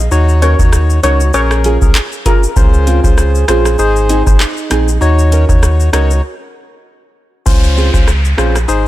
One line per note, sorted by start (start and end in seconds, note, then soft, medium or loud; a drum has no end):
0.11 0.55 D#2 loud
0.11 0.55 D#4 loud
0.11 0.55 F#4 medium
0.11 0.55 C#5 loud
0.11 shaker medium
0.29 shaker medium
0.42 0.60 C#4 medium
0.42 0.60 F#4 medium
0.42 0.60 A#4 medium
0.42 0.53 C#5 medium
0.42 closed hi-hat medium
0.42 shaker soft
0.59 0.99 D#2 loud
0.59 1.00 D#4 medium
0.59 1.00 F#4 medium
0.59 1.00 C#5 medium
0.59 kick medium
0.59 shaker medium
0.73 cross-stick medium
0.73 shaker medium
0.90 shaker medium
1.03 1.31 C#2 loud
1.03 1.21 C#4 medium
1.03 1.32 D#4 medium
1.03 1.32 F#4 medium
1.03 1.21 F#4 medium
1.03 1.22 A#4 medium
1.03 1.15 C#5 medium
1.03 1.32 C#5 medium
1.03 closed hi-hat medium
1.03 shaker medium
1.20 shaker medium
1.33 1.78 A#1 loud
1.33 1.78 C#4 loud
1.33 1.78 G#4 medium
1.33 1.78 A#4 loud
1.33 1.79 C#5 loud
1.33 shaker medium
1.51 cross-stick loud
1.51 shaker medium
1.64 1.82 C#4 medium
1.64 1.83 F4 medium
1.64 1.83 G#4 loud
1.64 closed hi-hat medium
1.64 shaker soft
1.82 1.94 C2 medium
1.82 1.99 C#4 medium
1.82 1.99 G#4 medium
1.82 1.99 A#4 medium
1.82 kick medium
1.82 shaker medium
1.95 cross-stick loud
1.95 clap loud
1.95 shaker medium
2.12 shaker soft
2.25 2.43 C#4 medium
2.25 2.44 F4 loud
2.25 2.44 G#4 loud
2.25 2.37 A#4 medium
2.25 kick loud
2.25 closed hi-hat medium
2.25 shaker medium
2.43 shaker medium
2.50 2.58 A#4 medium
2.56 3.00 C#2 loud
2.56 3.00 C#4 medium
2.56 3.00 F4 medium
2.56 3.17 G#4 loud
2.56 3.00 C5 loud
2.56 kick loud
2.56 shaker medium
2.74 shaker medium
2.87 3.05 C4 medium
2.87 3.05 F4 loud
2.87 3.05 G#4 loud
2.87 closed hi-hat medium
2.87 shaker soft
3.04 3.44 C#2 loud
3.04 3.45 C#4 medium
3.04 3.45 F4 medium
3.04 3.45 C5 medium
3.04 kick medium
3.04 shaker medium
3.18 3.46 G#4 loud
3.18 cross-stick medium
3.18 shaker medium
3.35 shaker medium
3.48 3.76 A#1 loud
3.48 3.66 C4 medium
3.48 3.77 C#4 medium
3.48 3.77 F4 medium
3.48 3.66 F4 loud
3.48 4.42 G#4 loud
3.48 3.67 G#4 loud
3.48 3.77 C5 medium
3.48 cross-stick loud
3.48 closed hi-hat medium
3.48 shaker medium
3.65 cross-stick medium
3.65 shaker medium
3.79 4.23 G#1 loud
3.79 4.23 D#4 medium
3.79 4.23 G#4 medium
3.79 4.23 C5 loud
3.79 shaker medium
3.96 shaker medium
4.09 4.27 C4 medium
4.09 4.27 D#4 medium
4.09 4.28 G#4 loud
4.09 closed hi-hat medium
4.09 shaker medium
4.26 4.39 G#1 medium
4.26 4.43 D#4 medium
4.26 4.44 G#4 medium
4.26 4.44 C5 medium
4.26 kick medium
4.26 shaker medium
4.40 5.63 D#4 medium
4.40 cross-stick medium
4.40 clap loud
4.40 shaker medium
4.57 shaker soft
4.70 4.99 A#1 loud
4.70 4.88 C4 medium
4.70 4.89 D#4 medium
4.70 4.89 G#4 medium
4.70 cross-stick loud
4.70 closed hi-hat medium
4.70 shaker medium
4.88 shaker medium
5.01 5.45 D#2 loud
5.01 5.45 D#4 loud
5.01 5.45 F#4 medium
5.01 5.45 C#5 loud
5.01 shaker medium
5.19 shaker medium
5.32 5.49 C#4 medium
5.32 5.50 F#4 medium
5.32 5.50 A#4 medium
5.32 closed hi-hat medium
5.32 shaker soft
5.49 5.89 D#2 loud
5.49 5.90 D#4 medium
5.49 5.90 F#4 medium
5.49 5.90 C#5 medium
5.49 kick medium
5.49 shaker medium
5.63 cross-stick medium
5.63 shaker medium
5.80 shaker medium
5.93 6.21 C#2 medium
5.93 6.11 C#4 medium
5.93 6.22 D#4 medium
5.93 6.22 F#4 medium
5.93 6.11 F#4 loud
5.93 6.12 A#4 medium
5.93 6.22 C#5 medium
5.93 cross-stick loud
5.93 closed hi-hat medium
5.93 shaker medium
6.11 shaker medium
7.46 7.90 C#2 loud
7.46 7.90 C#4 medium
7.46 7.90 F4 medium
7.46 7.90 C5 loud
7.46 kick loud
7.46 crash medium
7.46 downlifter medium
7.46 shaker medium
7.64 shaker medium
7.77 7.94 C4 medium
7.77 7.95 F4 medium
7.77 7.95 G#4 medium
7.77 shaker soft
7.93 8.34 C#2 loud
7.93 8.11 C#4 medium
7.93 8.11 F4 medium
7.93 8.11 C5 medium
7.93 kick medium
7.93 shaker medium
8.08 cross-stick medium
8.08 shaker medium
8.25 shaker soft
8.38 8.66 A#1 loud
8.38 8.56 C4 medium
8.38 8.58 C#4 medium
8.38 8.58 F4 medium
8.38 8.56 F4 medium
8.38 8.56 G#4 medium
8.38 8.58 C5 medium
8.38 cross-stick loud
8.38 shaker medium
8.56 cross-stick medium
8.56 shaker medium
8.68 8.88 G#1 loud
8.68 8.88 D#4 loud
8.68 8.88 G#4 medium
8.68 8.88 C5 loud
8.68 shaker medium